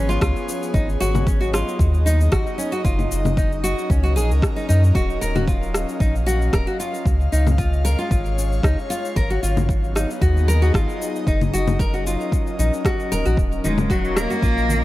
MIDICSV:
0, 0, Header, 1, 6, 480
1, 0, Start_track
1, 0, Tempo, 526316
1, 680, Time_signature, 4, 2, 24, 8
1, 13537, End_track
2, 0, Start_track
2, 0, Title_t, "Nylon-string guitar"
2, 0, Program_c, 0, 24
2, 81, Note_on_c, 0, 65, 76
2, 185, Note_off_c, 0, 65, 0
2, 196, Note_on_c, 0, 65, 84
2, 666, Note_off_c, 0, 65, 0
2, 674, Note_on_c, 0, 63, 77
2, 798, Note_off_c, 0, 63, 0
2, 916, Note_on_c, 0, 66, 97
2, 1147, Note_off_c, 0, 66, 0
2, 1156, Note_on_c, 0, 61, 78
2, 1273, Note_off_c, 0, 61, 0
2, 1282, Note_on_c, 0, 66, 75
2, 1392, Note_off_c, 0, 66, 0
2, 1399, Note_on_c, 0, 65, 74
2, 1868, Note_off_c, 0, 65, 0
2, 1877, Note_on_c, 0, 63, 76
2, 1999, Note_off_c, 0, 63, 0
2, 2113, Note_on_c, 0, 66, 100
2, 2345, Note_off_c, 0, 66, 0
2, 2353, Note_on_c, 0, 61, 71
2, 2471, Note_off_c, 0, 61, 0
2, 2481, Note_on_c, 0, 66, 78
2, 2592, Note_off_c, 0, 66, 0
2, 2596, Note_on_c, 0, 65, 78
2, 3067, Note_off_c, 0, 65, 0
2, 3077, Note_on_c, 0, 63, 72
2, 3199, Note_off_c, 0, 63, 0
2, 3316, Note_on_c, 0, 66, 89
2, 3547, Note_off_c, 0, 66, 0
2, 3556, Note_on_c, 0, 61, 69
2, 3672, Note_off_c, 0, 61, 0
2, 3680, Note_on_c, 0, 66, 73
2, 3789, Note_off_c, 0, 66, 0
2, 3793, Note_on_c, 0, 68, 96
2, 3917, Note_off_c, 0, 68, 0
2, 4162, Note_on_c, 0, 63, 69
2, 4264, Note_off_c, 0, 63, 0
2, 4274, Note_on_c, 0, 63, 91
2, 4398, Note_off_c, 0, 63, 0
2, 4516, Note_on_c, 0, 66, 98
2, 4747, Note_off_c, 0, 66, 0
2, 4755, Note_on_c, 0, 70, 94
2, 4872, Note_off_c, 0, 70, 0
2, 4882, Note_on_c, 0, 66, 71
2, 4991, Note_off_c, 0, 66, 0
2, 4995, Note_on_c, 0, 65, 81
2, 5466, Note_off_c, 0, 65, 0
2, 5473, Note_on_c, 0, 63, 76
2, 5597, Note_off_c, 0, 63, 0
2, 5713, Note_on_c, 0, 66, 95
2, 5945, Note_off_c, 0, 66, 0
2, 5957, Note_on_c, 0, 70, 101
2, 6073, Note_off_c, 0, 70, 0
2, 6083, Note_on_c, 0, 66, 70
2, 6192, Note_off_c, 0, 66, 0
2, 6198, Note_on_c, 0, 65, 69
2, 6439, Note_off_c, 0, 65, 0
2, 6678, Note_on_c, 0, 63, 77
2, 6800, Note_off_c, 0, 63, 0
2, 6916, Note_on_c, 0, 65, 94
2, 7147, Note_off_c, 0, 65, 0
2, 7156, Note_on_c, 0, 70, 98
2, 7272, Note_off_c, 0, 70, 0
2, 7283, Note_on_c, 0, 65, 80
2, 7386, Note_off_c, 0, 65, 0
2, 7397, Note_on_c, 0, 65, 71
2, 7867, Note_off_c, 0, 65, 0
2, 7879, Note_on_c, 0, 63, 77
2, 8000, Note_off_c, 0, 63, 0
2, 8117, Note_on_c, 0, 65, 94
2, 8347, Note_off_c, 0, 65, 0
2, 8357, Note_on_c, 0, 70, 105
2, 8473, Note_off_c, 0, 70, 0
2, 8485, Note_on_c, 0, 66, 76
2, 8593, Note_off_c, 0, 66, 0
2, 8598, Note_on_c, 0, 65, 76
2, 9068, Note_off_c, 0, 65, 0
2, 9078, Note_on_c, 0, 63, 68
2, 9200, Note_off_c, 0, 63, 0
2, 9317, Note_on_c, 0, 66, 96
2, 9547, Note_off_c, 0, 66, 0
2, 9559, Note_on_c, 0, 70, 101
2, 9674, Note_off_c, 0, 70, 0
2, 9686, Note_on_c, 0, 66, 78
2, 9794, Note_off_c, 0, 66, 0
2, 9799, Note_on_c, 0, 65, 81
2, 10268, Note_off_c, 0, 65, 0
2, 10282, Note_on_c, 0, 63, 84
2, 10401, Note_off_c, 0, 63, 0
2, 10520, Note_on_c, 0, 66, 101
2, 10749, Note_off_c, 0, 66, 0
2, 10760, Note_on_c, 0, 70, 98
2, 10874, Note_off_c, 0, 70, 0
2, 10886, Note_on_c, 0, 66, 73
2, 10994, Note_off_c, 0, 66, 0
2, 11004, Note_on_c, 0, 65, 74
2, 11471, Note_off_c, 0, 65, 0
2, 11482, Note_on_c, 0, 63, 73
2, 11602, Note_off_c, 0, 63, 0
2, 11725, Note_on_c, 0, 66, 100
2, 11951, Note_off_c, 0, 66, 0
2, 11963, Note_on_c, 0, 70, 98
2, 12076, Note_off_c, 0, 70, 0
2, 12088, Note_on_c, 0, 66, 76
2, 12195, Note_off_c, 0, 66, 0
2, 12440, Note_on_c, 0, 63, 71
2, 12561, Note_off_c, 0, 63, 0
2, 12679, Note_on_c, 0, 66, 98
2, 12908, Note_off_c, 0, 66, 0
2, 12920, Note_on_c, 0, 70, 89
2, 13035, Note_off_c, 0, 70, 0
2, 13044, Note_on_c, 0, 66, 74
2, 13153, Note_off_c, 0, 66, 0
2, 13158, Note_on_c, 0, 65, 80
2, 13537, Note_off_c, 0, 65, 0
2, 13537, End_track
3, 0, Start_track
3, 0, Title_t, "Analog synth pad"
3, 0, Program_c, 1, 89
3, 0, Note_on_c, 1, 53, 69
3, 0, Note_on_c, 1, 59, 86
3, 0, Note_on_c, 1, 61, 83
3, 0, Note_on_c, 1, 68, 72
3, 0, Note_on_c, 1, 73, 76
3, 676, Note_off_c, 1, 53, 0
3, 676, Note_on_c, 1, 54, 72
3, 937, Note_on_c, 1, 75, 87
3, 1398, Note_on_c, 1, 63, 77
3, 1446, Note_off_c, 1, 73, 0
3, 1451, Note_off_c, 1, 61, 0
3, 2596, Note_off_c, 1, 59, 0
3, 2882, Note_on_c, 1, 61, 75
3, 3220, Note_on_c, 1, 70, 73
3, 3360, Note_off_c, 1, 68, 0
3, 4664, Note_on_c, 1, 77, 75
3, 5290, Note_off_c, 1, 63, 0
3, 6438, Note_off_c, 1, 54, 0
3, 6440, Note_on_c, 1, 56, 67
3, 6441, Note_off_c, 1, 70, 0
3, 6888, Note_on_c, 1, 73, 72
3, 7212, Note_off_c, 1, 75, 0
3, 8359, Note_on_c, 1, 54, 74
3, 8360, Note_off_c, 1, 56, 0
3, 8590, Note_on_c, 1, 63, 79
3, 8685, Note_on_c, 1, 59, 78
3, 8900, Note_on_c, 1, 68, 71
3, 9067, Note_off_c, 1, 61, 0
3, 9127, Note_off_c, 1, 77, 0
3, 9129, Note_off_c, 1, 73, 0
3, 9137, Note_on_c, 1, 75, 77
3, 10274, Note_off_c, 1, 59, 0
3, 10331, Note_on_c, 1, 61, 67
3, 10723, Note_on_c, 1, 70, 82
3, 11045, Note_off_c, 1, 68, 0
3, 12327, Note_on_c, 1, 77, 74
3, 12969, Note_off_c, 1, 63, 0
3, 13537, Note_off_c, 1, 54, 0
3, 13537, Note_off_c, 1, 61, 0
3, 13537, Note_off_c, 1, 70, 0
3, 13537, Note_off_c, 1, 75, 0
3, 13537, Note_off_c, 1, 77, 0
3, 13537, End_track
4, 0, Start_track
4, 0, Title_t, "Cello"
4, 0, Program_c, 2, 42
4, 12448, Note_on_c, 2, 56, 91
4, 12691, Note_on_c, 2, 54, 94
4, 12705, Note_off_c, 2, 56, 0
4, 12919, Note_on_c, 2, 58, 109
4, 12933, Note_off_c, 2, 54, 0
4, 13537, Note_off_c, 2, 58, 0
4, 13537, End_track
5, 0, Start_track
5, 0, Title_t, "Analog synth bass"
5, 0, Program_c, 3, 38
5, 0, Note_on_c, 3, 32, 88
5, 168, Note_off_c, 3, 32, 0
5, 198, Note_on_c, 3, 37, 87
5, 305, Note_off_c, 3, 37, 0
5, 677, Note_on_c, 3, 32, 93
5, 880, Note_off_c, 3, 32, 0
5, 921, Note_on_c, 3, 32, 81
5, 1493, Note_off_c, 3, 32, 0
5, 1635, Note_on_c, 3, 39, 90
5, 2087, Note_off_c, 3, 39, 0
5, 2117, Note_on_c, 3, 32, 88
5, 2224, Note_off_c, 3, 32, 0
5, 2595, Note_on_c, 3, 30, 85
5, 2799, Note_off_c, 3, 30, 0
5, 2844, Note_on_c, 3, 30, 81
5, 3415, Note_off_c, 3, 30, 0
5, 3558, Note_on_c, 3, 37, 93
5, 3802, Note_on_c, 3, 34, 86
5, 3815, Note_off_c, 3, 37, 0
5, 3929, Note_on_c, 3, 37, 89
5, 3943, Note_off_c, 3, 34, 0
5, 4022, Note_off_c, 3, 37, 0
5, 4285, Note_on_c, 3, 42, 110
5, 4484, Note_off_c, 3, 42, 0
5, 4514, Note_on_c, 3, 27, 85
5, 4719, Note_off_c, 3, 27, 0
5, 4764, Note_on_c, 3, 27, 85
5, 5335, Note_off_c, 3, 27, 0
5, 5476, Note_on_c, 3, 34, 89
5, 5928, Note_off_c, 3, 34, 0
5, 5955, Note_on_c, 3, 27, 85
5, 6063, Note_off_c, 3, 27, 0
5, 6437, Note_on_c, 3, 37, 88
5, 6640, Note_off_c, 3, 37, 0
5, 6683, Note_on_c, 3, 37, 83
5, 7254, Note_off_c, 3, 37, 0
5, 7397, Note_on_c, 3, 32, 89
5, 7848, Note_off_c, 3, 32, 0
5, 7876, Note_on_c, 3, 37, 89
5, 7983, Note_off_c, 3, 37, 0
5, 8356, Note_on_c, 3, 32, 91
5, 8560, Note_off_c, 3, 32, 0
5, 8600, Note_on_c, 3, 32, 87
5, 9173, Note_off_c, 3, 32, 0
5, 9317, Note_on_c, 3, 39, 95
5, 9768, Note_off_c, 3, 39, 0
5, 9796, Note_on_c, 3, 32, 91
5, 9904, Note_off_c, 3, 32, 0
5, 10277, Note_on_c, 3, 30, 90
5, 10481, Note_off_c, 3, 30, 0
5, 10524, Note_on_c, 3, 30, 83
5, 11095, Note_off_c, 3, 30, 0
5, 11485, Note_on_c, 3, 34, 111
5, 11588, Note_off_c, 3, 34, 0
5, 11964, Note_on_c, 3, 27, 86
5, 12068, Note_off_c, 3, 27, 0
5, 12091, Note_on_c, 3, 34, 94
5, 12183, Note_off_c, 3, 34, 0
5, 12198, Note_on_c, 3, 27, 90
5, 12401, Note_off_c, 3, 27, 0
5, 12441, Note_on_c, 3, 27, 85
5, 13013, Note_off_c, 3, 27, 0
5, 13156, Note_on_c, 3, 34, 88
5, 13537, Note_off_c, 3, 34, 0
5, 13537, End_track
6, 0, Start_track
6, 0, Title_t, "Drums"
6, 94, Note_on_c, 9, 69, 33
6, 185, Note_off_c, 9, 69, 0
6, 195, Note_on_c, 9, 36, 100
6, 199, Note_on_c, 9, 37, 80
6, 205, Note_on_c, 9, 69, 42
6, 286, Note_off_c, 9, 36, 0
6, 290, Note_off_c, 9, 37, 0
6, 296, Note_off_c, 9, 69, 0
6, 331, Note_on_c, 9, 69, 22
6, 422, Note_off_c, 9, 69, 0
6, 444, Note_on_c, 9, 69, 83
6, 535, Note_off_c, 9, 69, 0
6, 573, Note_on_c, 9, 69, 34
6, 664, Note_off_c, 9, 69, 0
6, 675, Note_on_c, 9, 36, 109
6, 686, Note_on_c, 9, 69, 43
6, 766, Note_off_c, 9, 36, 0
6, 777, Note_off_c, 9, 69, 0
6, 815, Note_on_c, 9, 69, 22
6, 907, Note_off_c, 9, 69, 0
6, 927, Note_on_c, 9, 69, 79
6, 1018, Note_off_c, 9, 69, 0
6, 1047, Note_on_c, 9, 64, 73
6, 1053, Note_on_c, 9, 69, 36
6, 1139, Note_off_c, 9, 64, 0
6, 1144, Note_off_c, 9, 69, 0
6, 1156, Note_on_c, 9, 36, 99
6, 1167, Note_on_c, 9, 69, 45
6, 1247, Note_off_c, 9, 36, 0
6, 1258, Note_off_c, 9, 69, 0
6, 1295, Note_on_c, 9, 69, 22
6, 1387, Note_off_c, 9, 69, 0
6, 1403, Note_on_c, 9, 37, 78
6, 1408, Note_on_c, 9, 69, 78
6, 1494, Note_off_c, 9, 37, 0
6, 1499, Note_off_c, 9, 69, 0
6, 1538, Note_on_c, 9, 69, 33
6, 1629, Note_off_c, 9, 69, 0
6, 1635, Note_on_c, 9, 36, 108
6, 1646, Note_on_c, 9, 69, 49
6, 1726, Note_off_c, 9, 36, 0
6, 1737, Note_off_c, 9, 69, 0
6, 1772, Note_on_c, 9, 69, 22
6, 1863, Note_off_c, 9, 69, 0
6, 1887, Note_on_c, 9, 69, 86
6, 1978, Note_off_c, 9, 69, 0
6, 2012, Note_on_c, 9, 69, 37
6, 2103, Note_off_c, 9, 69, 0
6, 2116, Note_on_c, 9, 36, 108
6, 2119, Note_on_c, 9, 37, 77
6, 2124, Note_on_c, 9, 69, 43
6, 2207, Note_off_c, 9, 36, 0
6, 2210, Note_off_c, 9, 37, 0
6, 2215, Note_off_c, 9, 69, 0
6, 2252, Note_on_c, 9, 69, 22
6, 2344, Note_off_c, 9, 69, 0
6, 2363, Note_on_c, 9, 69, 80
6, 2455, Note_off_c, 9, 69, 0
6, 2488, Note_on_c, 9, 69, 33
6, 2579, Note_off_c, 9, 69, 0
6, 2595, Note_on_c, 9, 36, 106
6, 2602, Note_on_c, 9, 69, 46
6, 2686, Note_off_c, 9, 36, 0
6, 2693, Note_off_c, 9, 69, 0
6, 2727, Note_on_c, 9, 64, 51
6, 2732, Note_on_c, 9, 69, 22
6, 2818, Note_off_c, 9, 64, 0
6, 2823, Note_off_c, 9, 69, 0
6, 2841, Note_on_c, 9, 69, 79
6, 2932, Note_off_c, 9, 69, 0
6, 2966, Note_on_c, 9, 64, 72
6, 2971, Note_on_c, 9, 69, 34
6, 3057, Note_off_c, 9, 64, 0
6, 3062, Note_off_c, 9, 69, 0
6, 3075, Note_on_c, 9, 36, 104
6, 3086, Note_on_c, 9, 69, 44
6, 3166, Note_off_c, 9, 36, 0
6, 3178, Note_off_c, 9, 69, 0
6, 3213, Note_on_c, 9, 69, 22
6, 3305, Note_off_c, 9, 69, 0
6, 3323, Note_on_c, 9, 69, 82
6, 3414, Note_off_c, 9, 69, 0
6, 3453, Note_on_c, 9, 69, 30
6, 3544, Note_off_c, 9, 69, 0
6, 3556, Note_on_c, 9, 36, 109
6, 3566, Note_on_c, 9, 69, 46
6, 3647, Note_off_c, 9, 36, 0
6, 3657, Note_off_c, 9, 69, 0
6, 3695, Note_on_c, 9, 69, 23
6, 3787, Note_off_c, 9, 69, 0
6, 3805, Note_on_c, 9, 69, 82
6, 3897, Note_off_c, 9, 69, 0
6, 3934, Note_on_c, 9, 69, 35
6, 4025, Note_off_c, 9, 69, 0
6, 4035, Note_on_c, 9, 36, 107
6, 4042, Note_on_c, 9, 37, 74
6, 4048, Note_on_c, 9, 69, 45
6, 4126, Note_off_c, 9, 36, 0
6, 4134, Note_off_c, 9, 37, 0
6, 4139, Note_off_c, 9, 69, 0
6, 4174, Note_on_c, 9, 69, 22
6, 4265, Note_off_c, 9, 69, 0
6, 4285, Note_on_c, 9, 69, 77
6, 4377, Note_off_c, 9, 69, 0
6, 4415, Note_on_c, 9, 69, 32
6, 4506, Note_off_c, 9, 69, 0
6, 4513, Note_on_c, 9, 36, 109
6, 4526, Note_on_c, 9, 69, 42
6, 4604, Note_off_c, 9, 36, 0
6, 4617, Note_off_c, 9, 69, 0
6, 4651, Note_on_c, 9, 69, 22
6, 4742, Note_off_c, 9, 69, 0
6, 4764, Note_on_c, 9, 69, 77
6, 4855, Note_off_c, 9, 69, 0
6, 4887, Note_on_c, 9, 64, 71
6, 4892, Note_on_c, 9, 69, 31
6, 4978, Note_off_c, 9, 64, 0
6, 4983, Note_off_c, 9, 69, 0
6, 4993, Note_on_c, 9, 36, 100
6, 5005, Note_on_c, 9, 69, 42
6, 5085, Note_off_c, 9, 36, 0
6, 5097, Note_off_c, 9, 69, 0
6, 5132, Note_on_c, 9, 69, 21
6, 5224, Note_off_c, 9, 69, 0
6, 5239, Note_on_c, 9, 37, 75
6, 5244, Note_on_c, 9, 69, 69
6, 5330, Note_off_c, 9, 37, 0
6, 5335, Note_off_c, 9, 69, 0
6, 5370, Note_on_c, 9, 69, 31
6, 5462, Note_off_c, 9, 69, 0
6, 5474, Note_on_c, 9, 36, 105
6, 5485, Note_on_c, 9, 69, 44
6, 5566, Note_off_c, 9, 36, 0
6, 5576, Note_off_c, 9, 69, 0
6, 5614, Note_on_c, 9, 69, 22
6, 5705, Note_off_c, 9, 69, 0
6, 5726, Note_on_c, 9, 69, 78
6, 5817, Note_off_c, 9, 69, 0
6, 5853, Note_on_c, 9, 69, 35
6, 5944, Note_off_c, 9, 69, 0
6, 5955, Note_on_c, 9, 36, 107
6, 5959, Note_on_c, 9, 37, 72
6, 5965, Note_on_c, 9, 69, 41
6, 6046, Note_off_c, 9, 36, 0
6, 6051, Note_off_c, 9, 37, 0
6, 6056, Note_off_c, 9, 69, 0
6, 6092, Note_on_c, 9, 69, 21
6, 6183, Note_off_c, 9, 69, 0
6, 6203, Note_on_c, 9, 69, 75
6, 6295, Note_off_c, 9, 69, 0
6, 6333, Note_on_c, 9, 69, 31
6, 6424, Note_off_c, 9, 69, 0
6, 6434, Note_on_c, 9, 36, 97
6, 6444, Note_on_c, 9, 69, 40
6, 6525, Note_off_c, 9, 36, 0
6, 6535, Note_off_c, 9, 69, 0
6, 6574, Note_on_c, 9, 69, 20
6, 6666, Note_off_c, 9, 69, 0
6, 6686, Note_on_c, 9, 69, 73
6, 6777, Note_off_c, 9, 69, 0
6, 6810, Note_on_c, 9, 64, 75
6, 6815, Note_on_c, 9, 69, 31
6, 6901, Note_off_c, 9, 64, 0
6, 6906, Note_off_c, 9, 69, 0
6, 6915, Note_on_c, 9, 36, 94
6, 6926, Note_on_c, 9, 69, 42
6, 7006, Note_off_c, 9, 36, 0
6, 7017, Note_off_c, 9, 69, 0
6, 7053, Note_on_c, 9, 69, 19
6, 7145, Note_off_c, 9, 69, 0
6, 7164, Note_on_c, 9, 69, 75
6, 7255, Note_off_c, 9, 69, 0
6, 7290, Note_on_c, 9, 69, 32
6, 7381, Note_off_c, 9, 69, 0
6, 7395, Note_on_c, 9, 36, 106
6, 7402, Note_on_c, 9, 69, 47
6, 7486, Note_off_c, 9, 36, 0
6, 7494, Note_off_c, 9, 69, 0
6, 7530, Note_on_c, 9, 69, 21
6, 7621, Note_off_c, 9, 69, 0
6, 7646, Note_on_c, 9, 69, 81
6, 7738, Note_off_c, 9, 69, 0
6, 7773, Note_on_c, 9, 69, 31
6, 7864, Note_off_c, 9, 69, 0
6, 7874, Note_on_c, 9, 36, 96
6, 7882, Note_on_c, 9, 37, 71
6, 7887, Note_on_c, 9, 69, 38
6, 7965, Note_off_c, 9, 36, 0
6, 7973, Note_off_c, 9, 37, 0
6, 7978, Note_off_c, 9, 69, 0
6, 8016, Note_on_c, 9, 69, 21
6, 8107, Note_off_c, 9, 69, 0
6, 8126, Note_on_c, 9, 69, 72
6, 8218, Note_off_c, 9, 69, 0
6, 8254, Note_on_c, 9, 69, 32
6, 8345, Note_off_c, 9, 69, 0
6, 8355, Note_on_c, 9, 36, 93
6, 8366, Note_on_c, 9, 69, 41
6, 8446, Note_off_c, 9, 36, 0
6, 8457, Note_off_c, 9, 69, 0
6, 8494, Note_on_c, 9, 69, 19
6, 8585, Note_off_c, 9, 69, 0
6, 8606, Note_on_c, 9, 69, 76
6, 8698, Note_off_c, 9, 69, 0
6, 8729, Note_on_c, 9, 64, 78
6, 8734, Note_on_c, 9, 69, 32
6, 8820, Note_off_c, 9, 64, 0
6, 8826, Note_off_c, 9, 69, 0
6, 8836, Note_on_c, 9, 36, 94
6, 8847, Note_on_c, 9, 69, 39
6, 8927, Note_off_c, 9, 36, 0
6, 8939, Note_off_c, 9, 69, 0
6, 8974, Note_on_c, 9, 69, 21
6, 9065, Note_off_c, 9, 69, 0
6, 9083, Note_on_c, 9, 37, 68
6, 9088, Note_on_c, 9, 69, 72
6, 9174, Note_off_c, 9, 37, 0
6, 9180, Note_off_c, 9, 69, 0
6, 9215, Note_on_c, 9, 69, 31
6, 9307, Note_off_c, 9, 69, 0
6, 9316, Note_on_c, 9, 36, 104
6, 9328, Note_on_c, 9, 69, 43
6, 9407, Note_off_c, 9, 36, 0
6, 9419, Note_off_c, 9, 69, 0
6, 9458, Note_on_c, 9, 69, 21
6, 9549, Note_off_c, 9, 69, 0
6, 9569, Note_on_c, 9, 69, 73
6, 9660, Note_off_c, 9, 69, 0
6, 9696, Note_on_c, 9, 69, 31
6, 9787, Note_off_c, 9, 69, 0
6, 9796, Note_on_c, 9, 36, 100
6, 9803, Note_on_c, 9, 37, 69
6, 9808, Note_on_c, 9, 69, 39
6, 9887, Note_off_c, 9, 36, 0
6, 9894, Note_off_c, 9, 37, 0
6, 9899, Note_off_c, 9, 69, 0
6, 9935, Note_on_c, 9, 69, 21
6, 10026, Note_off_c, 9, 69, 0
6, 10049, Note_on_c, 9, 69, 75
6, 10140, Note_off_c, 9, 69, 0
6, 10176, Note_on_c, 9, 69, 32
6, 10268, Note_off_c, 9, 69, 0
6, 10276, Note_on_c, 9, 36, 102
6, 10287, Note_on_c, 9, 69, 40
6, 10367, Note_off_c, 9, 36, 0
6, 10378, Note_off_c, 9, 69, 0
6, 10410, Note_on_c, 9, 64, 62
6, 10415, Note_on_c, 9, 69, 20
6, 10501, Note_off_c, 9, 64, 0
6, 10507, Note_off_c, 9, 69, 0
6, 10527, Note_on_c, 9, 69, 75
6, 10618, Note_off_c, 9, 69, 0
6, 10649, Note_on_c, 9, 64, 83
6, 10654, Note_on_c, 9, 69, 30
6, 10740, Note_off_c, 9, 64, 0
6, 10745, Note_off_c, 9, 69, 0
6, 10756, Note_on_c, 9, 36, 93
6, 10766, Note_on_c, 9, 69, 44
6, 10847, Note_off_c, 9, 36, 0
6, 10857, Note_off_c, 9, 69, 0
6, 10893, Note_on_c, 9, 69, 20
6, 10984, Note_off_c, 9, 69, 0
6, 11005, Note_on_c, 9, 69, 69
6, 11096, Note_off_c, 9, 69, 0
6, 11133, Note_on_c, 9, 69, 31
6, 11224, Note_off_c, 9, 69, 0
6, 11237, Note_on_c, 9, 36, 98
6, 11245, Note_on_c, 9, 69, 45
6, 11328, Note_off_c, 9, 36, 0
6, 11336, Note_off_c, 9, 69, 0
6, 11375, Note_on_c, 9, 69, 22
6, 11466, Note_off_c, 9, 69, 0
6, 11488, Note_on_c, 9, 69, 78
6, 11579, Note_off_c, 9, 69, 0
6, 11615, Note_on_c, 9, 69, 31
6, 11706, Note_off_c, 9, 69, 0
6, 11717, Note_on_c, 9, 36, 103
6, 11724, Note_on_c, 9, 37, 80
6, 11729, Note_on_c, 9, 69, 41
6, 11808, Note_off_c, 9, 36, 0
6, 11815, Note_off_c, 9, 37, 0
6, 11820, Note_off_c, 9, 69, 0
6, 11854, Note_on_c, 9, 69, 21
6, 11945, Note_off_c, 9, 69, 0
6, 11968, Note_on_c, 9, 69, 71
6, 12059, Note_off_c, 9, 69, 0
6, 12094, Note_on_c, 9, 69, 31
6, 12186, Note_off_c, 9, 69, 0
6, 12196, Note_on_c, 9, 36, 105
6, 12207, Note_on_c, 9, 69, 42
6, 12287, Note_off_c, 9, 36, 0
6, 12298, Note_off_c, 9, 69, 0
6, 12333, Note_on_c, 9, 69, 21
6, 12424, Note_off_c, 9, 69, 0
6, 12445, Note_on_c, 9, 69, 72
6, 12450, Note_on_c, 9, 64, 75
6, 12451, Note_on_c, 9, 63, 58
6, 12537, Note_off_c, 9, 69, 0
6, 12541, Note_off_c, 9, 64, 0
6, 12542, Note_off_c, 9, 63, 0
6, 12566, Note_on_c, 9, 64, 79
6, 12571, Note_on_c, 9, 69, 32
6, 12657, Note_off_c, 9, 64, 0
6, 12662, Note_off_c, 9, 69, 0
6, 12675, Note_on_c, 9, 36, 95
6, 12683, Note_on_c, 9, 69, 45
6, 12766, Note_off_c, 9, 36, 0
6, 12774, Note_off_c, 9, 69, 0
6, 12812, Note_on_c, 9, 69, 22
6, 12903, Note_off_c, 9, 69, 0
6, 12918, Note_on_c, 9, 37, 74
6, 12924, Note_on_c, 9, 69, 75
6, 12927, Note_on_c, 9, 60, 58
6, 13009, Note_off_c, 9, 37, 0
6, 13015, Note_off_c, 9, 69, 0
6, 13018, Note_off_c, 9, 60, 0
6, 13053, Note_on_c, 9, 69, 31
6, 13054, Note_on_c, 9, 63, 66
6, 13144, Note_off_c, 9, 69, 0
6, 13146, Note_off_c, 9, 63, 0
6, 13155, Note_on_c, 9, 36, 105
6, 13163, Note_on_c, 9, 69, 46
6, 13246, Note_off_c, 9, 36, 0
6, 13255, Note_off_c, 9, 69, 0
6, 13295, Note_on_c, 9, 69, 22
6, 13386, Note_off_c, 9, 69, 0
6, 13400, Note_on_c, 9, 64, 90
6, 13405, Note_on_c, 9, 69, 81
6, 13491, Note_off_c, 9, 64, 0
6, 13496, Note_off_c, 9, 69, 0
6, 13537, End_track
0, 0, End_of_file